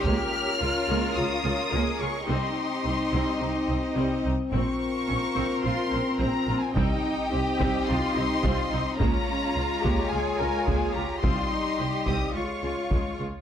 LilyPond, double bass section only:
\new Staff \with { instrumentName = "Double bass section" } { \clef bass \time 4/4 \key c \phrygian \tempo 4 = 107 des,8 r8 des,8 des,8 des,8 des,8 des,8 des,8 | c,8 r8 c,8 c,8 c,8 c,8 c,8 c,8 | bes,,8 r8 bes,,8 bes,,8 bes,,8 bes,,8 bes,,8 bes,,8 | c,8 r8 c,8 c,8 c,8 c,8 c,8 c,8 |
des,8 r8 des,8 des,8 des,8 des,8 des,8 des,8 | c,8 r8 c,8 c,8 des,8 des,8 des,8 des,8 | }